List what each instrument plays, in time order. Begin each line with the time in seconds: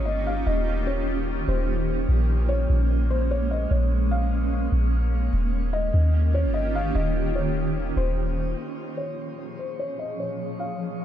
Already playing: 808-style bass G1, ambient pad D#3 A#3 C#4 D#4 F4 G4
0.05 felt piano D#5
0.27 felt piano F5
0.46 808-style bass D#1, felt piano D#5
0.87 felt piano C#5
1.48 808-style bass D#1, felt piano C5
2.09 808-style bass A#1, ambient pad G#3
2.49 felt piano C#5
2.69 808-style bass A#1
3.10 felt piano C5
3.31 felt piano C#5
3.51 felt piano D#5
3.71 808-style bass A#1, felt piano C#5
4.11 felt piano F5
4.72 808-style bass A#1
5.33 808-style bass D#1, ambient pad D#3 A#3 C#4 D#4 F4 G4
5.73 felt piano D#5
5.94 808-style bass D#2
6.34 felt piano C#5
6.44 808-style bass G1
6.54 felt piano D#5
6.75 felt piano F5
6.95 808-style bass D#1, felt piano D#5
7.35 felt piano C#5
7.96 808-style bass D#1, felt piano C5
8.57 ambient pad A#2 F3 C#4 G#4 C#5
8.97 felt piano C#5
9.59 felt piano C5
9.79 felt piano C#5
9.99 felt piano D#5
10.20 felt piano C#5
10.60 felt piano F5